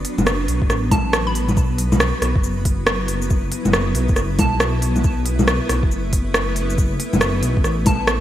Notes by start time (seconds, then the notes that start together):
Already playing: F#3 B3 D4 B4
0.05 open hi-hat
0.17 F#1, low bongo, shaker
0.27 cross-stick, shaker
0.48 B1, open hi-hat
0.62 F#1, kick
0.69 A1, cross-stick, shaker
0.91 A5, kick, open hi-hat, low bongo
1.13 cross-stick, shaker
1.27 B5
1.35 open hi-hat
1.48 low bongo, shaker
1.57 B1 E4, kick, shaker
1.78 open hi-hat
1.92 low bongo, shaker
2.00 cross-stick, shaker
2.21 B1, cross-stick, open hi-hat
2.35 F#1, kick
2.44 shaker
2.65 kick, open hi-hat
2.87 cross-stick, shaker
3.08 open hi-hat
3.22 shaker
3.30 kick, shaker
3.52 open hi-hat
3.65 F#1, low bongo, shaker
3.73 cross-stick, shaker
3.95 B1, open hi-hat
4.08 F#1, kick, shaker
4.16 cross-stick, shaker
4.39 B1 A5, kick, open hi-hat, low bongo
4.60 cross-stick, shaker
4.82 B1, open hi-hat
4.96 low bongo, shaker
5.04 B1 A3, kick, shaker
5.26 open hi-hat
5.39 low bongo, shaker
5.48 cross-stick, shaker
5.69 B1, cross-stick, open hi-hat
5.83 F#1, kick
5.91 shaker
6.13 kick, open hi-hat
6.34 cross-stick, shaker
6.56 open hi-hat
6.70 shaker
6.78 kick, shaker
7.00 open hi-hat
7.13 F#1, low bongo, shaker
7.21 cross-stick, shaker
7.42 B1, open hi-hat
7.57 F#1, kick
7.64 A1, cross-stick, shaker
7.86 A5, kick, open hi-hat, low bongo
8.07 cross-stick, shaker